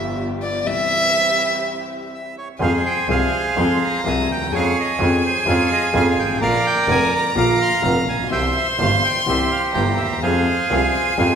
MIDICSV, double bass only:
0, 0, Header, 1, 2, 480
1, 0, Start_track
1, 0, Key_signature, -4, "minor"
1, 0, Tempo, 481541
1, 663, Time_signature, 4, 2, 24, 8
1, 4031, Tempo, 475813
1, 11403, End_track
2, 0, Start_track
2, 0, Title_t, "Double bass"
2, 0, Program_c, 0, 43
2, 0, Note_on_c, 0, 31, 77
2, 613, Note_off_c, 0, 31, 0
2, 2587, Note_on_c, 0, 41, 99
2, 2792, Note_off_c, 0, 41, 0
2, 3070, Note_on_c, 0, 36, 98
2, 3272, Note_off_c, 0, 36, 0
2, 3551, Note_on_c, 0, 41, 98
2, 3752, Note_off_c, 0, 41, 0
2, 4033, Note_on_c, 0, 36, 101
2, 4233, Note_off_c, 0, 36, 0
2, 4276, Note_on_c, 0, 39, 60
2, 4505, Note_off_c, 0, 39, 0
2, 4511, Note_on_c, 0, 41, 92
2, 4710, Note_off_c, 0, 41, 0
2, 4985, Note_on_c, 0, 41, 109
2, 5186, Note_off_c, 0, 41, 0
2, 5460, Note_on_c, 0, 41, 99
2, 5663, Note_off_c, 0, 41, 0
2, 5945, Note_on_c, 0, 41, 110
2, 6144, Note_off_c, 0, 41, 0
2, 6177, Note_on_c, 0, 32, 63
2, 6406, Note_off_c, 0, 32, 0
2, 6412, Note_on_c, 0, 34, 95
2, 6614, Note_off_c, 0, 34, 0
2, 6888, Note_on_c, 0, 29, 102
2, 7092, Note_off_c, 0, 29, 0
2, 7371, Note_on_c, 0, 34, 96
2, 7574, Note_off_c, 0, 34, 0
2, 7855, Note_on_c, 0, 29, 105
2, 8054, Note_off_c, 0, 29, 0
2, 8096, Note_on_c, 0, 34, 62
2, 8333, Note_off_c, 0, 34, 0
2, 8338, Note_on_c, 0, 36, 94
2, 8536, Note_off_c, 0, 36, 0
2, 8821, Note_on_c, 0, 31, 102
2, 9018, Note_off_c, 0, 31, 0
2, 9304, Note_on_c, 0, 36, 93
2, 9504, Note_off_c, 0, 36, 0
2, 9779, Note_on_c, 0, 31, 101
2, 9985, Note_off_c, 0, 31, 0
2, 10031, Note_on_c, 0, 39, 57
2, 10267, Note_off_c, 0, 39, 0
2, 10273, Note_on_c, 0, 41, 94
2, 10472, Note_off_c, 0, 41, 0
2, 10749, Note_on_c, 0, 36, 93
2, 10952, Note_off_c, 0, 36, 0
2, 11230, Note_on_c, 0, 41, 102
2, 11403, Note_off_c, 0, 41, 0
2, 11403, End_track
0, 0, End_of_file